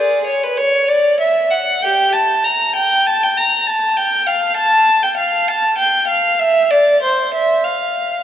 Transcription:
0.00 0.24 G#4 medium
0.00 0.26 D5 medium
0.27 0.42 C#5 medium
0.44 0.58 B4 medium
0.58 0.89 C#5 medium
0.89 1.20 D5 medium
1.20 1.50 E5 medium
1.51 1.82 F#5 medium
1.82 2.11 G4 medium
1.82 2.13 G5 medium
2.13 2.44 A5 medium
2.44 2.76 A#5 medium
2.76 3.06 G5 medium
3.07 3.22 A5 medium
3.23 3.37 G5 medium
3.37 3.67 A#5 medium
3.67 3.97 A5 medium
3.97 4.27 G5 medium
4.27 4.57 F5 medium
4.57 5.02 A5 loud
5.03 5.18 G5 medium
5.18 5.47 F5 medium
5.48 5.78 A5 medium
5.78 6.08 G5 medium
6.08 6.38 F5 medium
6.40 6.71 E5 loud
6.71 7.02 D5 medium
7.03 7.33 C5 medium
7.34 7.64 E5 medium
7.64 8.23 F5 medium

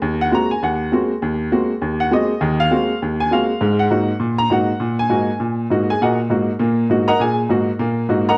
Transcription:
0.02 0.27 D#2 medium
0.21 0.32 F#5 medium
0.31 0.51 G#3 medium
0.31 0.51 A#3 medium
0.31 0.51 C4 soft
0.31 0.51 F#4 medium
0.31 0.51 A#5 medium
0.51 0.61 G#5 medium
0.62 0.87 D#2 medium
0.62 0.90 F#5 medium
0.92 1.11 G#3 medium
0.92 1.11 A#3 medium
0.92 1.11 C4 medium
0.92 1.12 F#4 medium
1.22 1.47 D#2 medium
1.52 1.71 G#3 medium
1.52 1.71 A#3 medium
1.52 1.71 C4 medium
1.52 1.71 F#4 medium
1.82 2.07 D#2 medium
2.00 2.11 F#5 medium
2.11 2.31 G#3 medium
2.11 2.30 A#3 medium
2.11 2.31 C4 medium
2.11 2.31 F#4 medium
2.11 2.57 D#5 medium
2.41 2.66 D#2 medium
2.41 2.66 D#3 medium
2.60 2.98 F5 loud
2.71 2.90 G#3 medium
2.71 2.90 A#3 medium
2.71 2.90 C4 medium
2.71 2.91 F#4 medium
3.02 3.27 D#2 medium
3.20 3.30 G#5 medium
3.31 3.50 G#3 medium
3.31 3.50 A#3 medium
3.31 3.50 C4 medium
3.31 3.51 F#4 medium
3.31 3.76 F5 medium
3.61 3.86 G#2 medium
3.61 3.86 G#3 medium
3.79 4.17 F#5 medium
3.91 4.10 G#2 medium
3.91 4.10 A#3 medium
3.91 4.10 D#4 medium
3.91 4.10 F#4 medium
4.20 4.45 A#2 medium
4.38 4.49 A#5 loud
4.50 4.69 G#2 medium
4.50 4.70 A#3 medium
4.50 4.70 D#4 medium
4.50 4.70 F#4 medium
4.50 4.96 F#5 medium
4.80 5.05 A#2 medium
4.99 5.37 G#5 medium
5.10 5.29 G#2 medium
5.10 5.29 A#3 medium
5.10 5.29 D#4 medium
5.10 5.29 F#4 medium
5.40 5.65 A#2 medium
5.70 5.89 G#2 medium
5.70 5.90 A#3 medium
5.70 5.90 D#4 medium
5.70 5.90 F#4 medium
5.90 6.00 G#4 medium
5.90 6.00 G#5 medium
6.02 6.26 A#2 medium
6.02 6.19 F#4 medium
6.02 6.19 A#4 medium
6.02 6.19 D#5 medium
6.02 6.18 F#5 medium
6.30 6.49 G#2 medium
6.30 6.49 A#3 medium
6.30 6.49 D#4 medium
6.30 6.49 F#4 medium
6.59 6.85 A#2 medium
6.59 6.85 A#3 medium
6.90 7.09 G#2 medium
6.90 7.09 A#3 medium
6.90 7.09 D#4 medium
6.90 7.09 F#4 medium
7.08 7.19 A#4 medium
7.08 7.18 D#5 medium
7.08 7.19 F#5 medium
7.08 7.18 A#5 loud
7.20 7.45 A#2 medium
7.20 7.38 G#4 medium
7.20 7.38 G#5 medium
7.49 7.68 G#2 medium
7.49 7.69 A#3 medium
7.49 7.69 D#4 medium
7.49 7.69 F#4 medium
7.79 8.04 A#2 medium
7.79 8.04 A#3 medium
8.09 8.28 G#2 medium
8.09 8.28 A#3 medium
8.09 8.28 D#4 medium
8.09 8.28 F#4 medium
8.29 8.38 A#4 medium
8.29 8.38 D#5 medium
8.29 8.38 F#5 medium
8.29 8.38 A#5 loud

